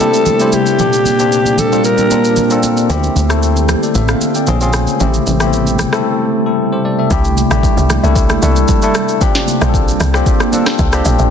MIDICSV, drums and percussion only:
0, 0, Header, 1, 2, 480
1, 0, Start_track
1, 0, Tempo, 526316
1, 722, Time_signature, 4, 2, 24, 8
1, 10307, End_track
2, 0, Start_track
2, 0, Title_t, "Drums"
2, 0, Note_on_c, 9, 63, 66
2, 1, Note_on_c, 9, 82, 83
2, 90, Note_off_c, 9, 63, 0
2, 92, Note_off_c, 9, 82, 0
2, 125, Note_on_c, 9, 82, 54
2, 216, Note_off_c, 9, 82, 0
2, 235, Note_on_c, 9, 82, 66
2, 239, Note_on_c, 9, 63, 69
2, 239, Note_on_c, 9, 64, 68
2, 326, Note_off_c, 9, 82, 0
2, 330, Note_off_c, 9, 63, 0
2, 330, Note_off_c, 9, 64, 0
2, 362, Note_on_c, 9, 82, 54
2, 453, Note_off_c, 9, 82, 0
2, 477, Note_on_c, 9, 82, 87
2, 479, Note_on_c, 9, 63, 62
2, 568, Note_off_c, 9, 82, 0
2, 570, Note_off_c, 9, 63, 0
2, 603, Note_on_c, 9, 82, 47
2, 694, Note_off_c, 9, 82, 0
2, 721, Note_on_c, 9, 64, 73
2, 721, Note_on_c, 9, 82, 75
2, 812, Note_off_c, 9, 82, 0
2, 813, Note_off_c, 9, 64, 0
2, 847, Note_on_c, 9, 82, 51
2, 939, Note_off_c, 9, 82, 0
2, 961, Note_on_c, 9, 63, 68
2, 964, Note_on_c, 9, 82, 85
2, 1052, Note_off_c, 9, 63, 0
2, 1055, Note_off_c, 9, 82, 0
2, 1089, Note_on_c, 9, 82, 60
2, 1180, Note_off_c, 9, 82, 0
2, 1206, Note_on_c, 9, 82, 72
2, 1297, Note_off_c, 9, 82, 0
2, 1325, Note_on_c, 9, 63, 51
2, 1331, Note_on_c, 9, 82, 53
2, 1416, Note_off_c, 9, 63, 0
2, 1422, Note_off_c, 9, 82, 0
2, 1440, Note_on_c, 9, 63, 66
2, 1440, Note_on_c, 9, 64, 65
2, 1443, Note_on_c, 9, 82, 92
2, 1531, Note_off_c, 9, 63, 0
2, 1531, Note_off_c, 9, 64, 0
2, 1534, Note_off_c, 9, 82, 0
2, 1573, Note_on_c, 9, 82, 50
2, 1665, Note_off_c, 9, 82, 0
2, 1681, Note_on_c, 9, 82, 79
2, 1772, Note_off_c, 9, 82, 0
2, 1805, Note_on_c, 9, 63, 65
2, 1805, Note_on_c, 9, 82, 47
2, 1896, Note_off_c, 9, 63, 0
2, 1896, Note_off_c, 9, 82, 0
2, 1920, Note_on_c, 9, 63, 66
2, 1922, Note_on_c, 9, 82, 90
2, 2011, Note_off_c, 9, 63, 0
2, 2013, Note_off_c, 9, 82, 0
2, 2046, Note_on_c, 9, 82, 53
2, 2137, Note_off_c, 9, 82, 0
2, 2155, Note_on_c, 9, 82, 70
2, 2161, Note_on_c, 9, 63, 69
2, 2161, Note_on_c, 9, 64, 65
2, 2247, Note_off_c, 9, 82, 0
2, 2252, Note_off_c, 9, 63, 0
2, 2252, Note_off_c, 9, 64, 0
2, 2284, Note_on_c, 9, 82, 55
2, 2375, Note_off_c, 9, 82, 0
2, 2398, Note_on_c, 9, 82, 88
2, 2402, Note_on_c, 9, 63, 65
2, 2490, Note_off_c, 9, 82, 0
2, 2493, Note_off_c, 9, 63, 0
2, 2526, Note_on_c, 9, 82, 51
2, 2617, Note_off_c, 9, 82, 0
2, 2643, Note_on_c, 9, 64, 78
2, 2645, Note_on_c, 9, 82, 78
2, 2734, Note_off_c, 9, 64, 0
2, 2736, Note_off_c, 9, 82, 0
2, 2769, Note_on_c, 9, 82, 52
2, 2860, Note_off_c, 9, 82, 0
2, 2879, Note_on_c, 9, 63, 68
2, 2885, Note_on_c, 9, 82, 81
2, 2971, Note_off_c, 9, 63, 0
2, 2976, Note_off_c, 9, 82, 0
2, 3009, Note_on_c, 9, 82, 60
2, 3010, Note_on_c, 9, 37, 91
2, 3100, Note_off_c, 9, 82, 0
2, 3101, Note_off_c, 9, 37, 0
2, 3126, Note_on_c, 9, 82, 73
2, 3217, Note_off_c, 9, 82, 0
2, 3246, Note_on_c, 9, 63, 55
2, 3250, Note_on_c, 9, 82, 52
2, 3338, Note_off_c, 9, 63, 0
2, 3342, Note_off_c, 9, 82, 0
2, 3360, Note_on_c, 9, 63, 64
2, 3360, Note_on_c, 9, 64, 65
2, 3362, Note_on_c, 9, 82, 97
2, 3364, Note_on_c, 9, 37, 86
2, 3452, Note_off_c, 9, 63, 0
2, 3452, Note_off_c, 9, 64, 0
2, 3453, Note_off_c, 9, 82, 0
2, 3455, Note_off_c, 9, 37, 0
2, 3493, Note_on_c, 9, 82, 48
2, 3584, Note_off_c, 9, 82, 0
2, 3600, Note_on_c, 9, 82, 80
2, 3691, Note_off_c, 9, 82, 0
2, 3724, Note_on_c, 9, 82, 45
2, 3726, Note_on_c, 9, 63, 67
2, 3727, Note_on_c, 9, 37, 83
2, 3815, Note_off_c, 9, 82, 0
2, 3818, Note_off_c, 9, 37, 0
2, 3818, Note_off_c, 9, 63, 0
2, 3840, Note_on_c, 9, 63, 66
2, 3841, Note_on_c, 9, 82, 86
2, 3931, Note_off_c, 9, 63, 0
2, 3932, Note_off_c, 9, 82, 0
2, 3964, Note_on_c, 9, 82, 53
2, 4055, Note_off_c, 9, 82, 0
2, 4075, Note_on_c, 9, 82, 67
2, 4080, Note_on_c, 9, 63, 72
2, 4080, Note_on_c, 9, 64, 67
2, 4166, Note_off_c, 9, 82, 0
2, 4171, Note_off_c, 9, 63, 0
2, 4171, Note_off_c, 9, 64, 0
2, 4203, Note_on_c, 9, 82, 57
2, 4294, Note_off_c, 9, 82, 0
2, 4315, Note_on_c, 9, 82, 89
2, 4319, Note_on_c, 9, 37, 103
2, 4320, Note_on_c, 9, 63, 66
2, 4407, Note_off_c, 9, 82, 0
2, 4410, Note_off_c, 9, 37, 0
2, 4411, Note_off_c, 9, 63, 0
2, 4443, Note_on_c, 9, 82, 50
2, 4534, Note_off_c, 9, 82, 0
2, 4561, Note_on_c, 9, 82, 80
2, 4563, Note_on_c, 9, 64, 73
2, 4652, Note_off_c, 9, 82, 0
2, 4654, Note_off_c, 9, 64, 0
2, 4687, Note_on_c, 9, 82, 51
2, 4778, Note_off_c, 9, 82, 0
2, 4800, Note_on_c, 9, 63, 68
2, 4803, Note_on_c, 9, 82, 79
2, 4892, Note_off_c, 9, 63, 0
2, 4894, Note_off_c, 9, 82, 0
2, 4927, Note_on_c, 9, 37, 88
2, 4927, Note_on_c, 9, 82, 62
2, 5018, Note_off_c, 9, 82, 0
2, 5019, Note_off_c, 9, 37, 0
2, 5045, Note_on_c, 9, 82, 72
2, 5136, Note_off_c, 9, 82, 0
2, 5166, Note_on_c, 9, 63, 54
2, 5170, Note_on_c, 9, 82, 56
2, 5257, Note_off_c, 9, 63, 0
2, 5261, Note_off_c, 9, 82, 0
2, 5280, Note_on_c, 9, 63, 64
2, 5280, Note_on_c, 9, 64, 65
2, 5280, Note_on_c, 9, 82, 92
2, 5282, Note_on_c, 9, 37, 88
2, 5371, Note_off_c, 9, 63, 0
2, 5371, Note_off_c, 9, 64, 0
2, 5371, Note_off_c, 9, 82, 0
2, 5373, Note_off_c, 9, 37, 0
2, 5405, Note_on_c, 9, 37, 98
2, 5412, Note_on_c, 9, 82, 53
2, 5496, Note_off_c, 9, 37, 0
2, 5503, Note_off_c, 9, 82, 0
2, 6482, Note_on_c, 9, 36, 105
2, 6482, Note_on_c, 9, 82, 82
2, 6484, Note_on_c, 9, 64, 76
2, 6573, Note_off_c, 9, 36, 0
2, 6573, Note_off_c, 9, 82, 0
2, 6575, Note_off_c, 9, 64, 0
2, 6607, Note_on_c, 9, 82, 56
2, 6698, Note_off_c, 9, 82, 0
2, 6719, Note_on_c, 9, 63, 73
2, 6725, Note_on_c, 9, 82, 88
2, 6810, Note_off_c, 9, 63, 0
2, 6816, Note_off_c, 9, 82, 0
2, 6849, Note_on_c, 9, 37, 90
2, 6849, Note_on_c, 9, 82, 65
2, 6940, Note_off_c, 9, 82, 0
2, 6941, Note_off_c, 9, 37, 0
2, 6961, Note_on_c, 9, 36, 99
2, 6967, Note_on_c, 9, 82, 77
2, 7053, Note_off_c, 9, 36, 0
2, 7058, Note_off_c, 9, 82, 0
2, 7092, Note_on_c, 9, 82, 58
2, 7183, Note_off_c, 9, 82, 0
2, 7199, Note_on_c, 9, 63, 66
2, 7199, Note_on_c, 9, 64, 68
2, 7202, Note_on_c, 9, 82, 95
2, 7204, Note_on_c, 9, 37, 93
2, 7290, Note_off_c, 9, 63, 0
2, 7290, Note_off_c, 9, 64, 0
2, 7293, Note_off_c, 9, 82, 0
2, 7295, Note_off_c, 9, 37, 0
2, 7333, Note_on_c, 9, 82, 53
2, 7424, Note_off_c, 9, 82, 0
2, 7440, Note_on_c, 9, 36, 111
2, 7440, Note_on_c, 9, 82, 80
2, 7531, Note_off_c, 9, 36, 0
2, 7531, Note_off_c, 9, 82, 0
2, 7564, Note_on_c, 9, 63, 69
2, 7564, Note_on_c, 9, 82, 48
2, 7567, Note_on_c, 9, 37, 86
2, 7655, Note_off_c, 9, 63, 0
2, 7656, Note_off_c, 9, 82, 0
2, 7659, Note_off_c, 9, 37, 0
2, 7680, Note_on_c, 9, 63, 68
2, 7681, Note_on_c, 9, 82, 91
2, 7772, Note_off_c, 9, 63, 0
2, 7772, Note_off_c, 9, 82, 0
2, 7806, Note_on_c, 9, 82, 56
2, 7897, Note_off_c, 9, 82, 0
2, 7917, Note_on_c, 9, 82, 73
2, 7920, Note_on_c, 9, 63, 71
2, 7920, Note_on_c, 9, 64, 72
2, 7923, Note_on_c, 9, 36, 86
2, 8008, Note_off_c, 9, 82, 0
2, 8011, Note_off_c, 9, 63, 0
2, 8011, Note_off_c, 9, 64, 0
2, 8014, Note_off_c, 9, 36, 0
2, 8044, Note_on_c, 9, 82, 59
2, 8135, Note_off_c, 9, 82, 0
2, 8158, Note_on_c, 9, 82, 93
2, 8161, Note_on_c, 9, 37, 108
2, 8161, Note_on_c, 9, 63, 67
2, 8250, Note_off_c, 9, 82, 0
2, 8252, Note_off_c, 9, 63, 0
2, 8253, Note_off_c, 9, 37, 0
2, 8286, Note_on_c, 9, 82, 53
2, 8377, Note_off_c, 9, 82, 0
2, 8402, Note_on_c, 9, 36, 101
2, 8402, Note_on_c, 9, 82, 86
2, 8404, Note_on_c, 9, 64, 76
2, 8493, Note_off_c, 9, 82, 0
2, 8494, Note_off_c, 9, 36, 0
2, 8495, Note_off_c, 9, 64, 0
2, 8528, Note_on_c, 9, 38, 61
2, 8528, Note_on_c, 9, 82, 54
2, 8619, Note_off_c, 9, 38, 0
2, 8620, Note_off_c, 9, 82, 0
2, 8641, Note_on_c, 9, 63, 70
2, 8646, Note_on_c, 9, 82, 87
2, 8732, Note_off_c, 9, 63, 0
2, 8737, Note_off_c, 9, 82, 0
2, 8770, Note_on_c, 9, 37, 94
2, 8770, Note_on_c, 9, 82, 65
2, 8861, Note_off_c, 9, 37, 0
2, 8861, Note_off_c, 9, 82, 0
2, 8881, Note_on_c, 9, 36, 102
2, 8887, Note_on_c, 9, 82, 73
2, 8973, Note_off_c, 9, 36, 0
2, 8978, Note_off_c, 9, 82, 0
2, 9012, Note_on_c, 9, 82, 55
2, 9103, Note_off_c, 9, 82, 0
2, 9121, Note_on_c, 9, 63, 70
2, 9121, Note_on_c, 9, 64, 67
2, 9123, Note_on_c, 9, 82, 96
2, 9125, Note_on_c, 9, 37, 89
2, 9212, Note_off_c, 9, 63, 0
2, 9212, Note_off_c, 9, 64, 0
2, 9214, Note_off_c, 9, 82, 0
2, 9216, Note_off_c, 9, 37, 0
2, 9248, Note_on_c, 9, 37, 102
2, 9256, Note_on_c, 9, 82, 54
2, 9340, Note_off_c, 9, 37, 0
2, 9347, Note_off_c, 9, 82, 0
2, 9360, Note_on_c, 9, 36, 113
2, 9361, Note_on_c, 9, 82, 79
2, 9451, Note_off_c, 9, 36, 0
2, 9452, Note_off_c, 9, 82, 0
2, 9485, Note_on_c, 9, 82, 49
2, 9487, Note_on_c, 9, 37, 88
2, 9487, Note_on_c, 9, 63, 69
2, 9576, Note_off_c, 9, 82, 0
2, 9579, Note_off_c, 9, 37, 0
2, 9579, Note_off_c, 9, 63, 0
2, 9601, Note_on_c, 9, 63, 70
2, 9601, Note_on_c, 9, 82, 92
2, 9692, Note_off_c, 9, 63, 0
2, 9692, Note_off_c, 9, 82, 0
2, 9725, Note_on_c, 9, 37, 103
2, 9725, Note_on_c, 9, 38, 73
2, 9726, Note_on_c, 9, 82, 58
2, 9817, Note_off_c, 9, 37, 0
2, 9817, Note_off_c, 9, 38, 0
2, 9817, Note_off_c, 9, 82, 0
2, 9835, Note_on_c, 9, 82, 71
2, 9841, Note_on_c, 9, 63, 70
2, 9841, Note_on_c, 9, 64, 70
2, 9842, Note_on_c, 9, 36, 89
2, 9927, Note_off_c, 9, 82, 0
2, 9932, Note_off_c, 9, 63, 0
2, 9932, Note_off_c, 9, 64, 0
2, 9933, Note_off_c, 9, 36, 0
2, 9963, Note_on_c, 9, 82, 61
2, 9966, Note_on_c, 9, 37, 93
2, 10054, Note_off_c, 9, 82, 0
2, 10058, Note_off_c, 9, 37, 0
2, 10077, Note_on_c, 9, 82, 91
2, 10083, Note_on_c, 9, 63, 72
2, 10169, Note_off_c, 9, 82, 0
2, 10174, Note_off_c, 9, 63, 0
2, 10205, Note_on_c, 9, 82, 54
2, 10296, Note_off_c, 9, 82, 0
2, 10307, End_track
0, 0, End_of_file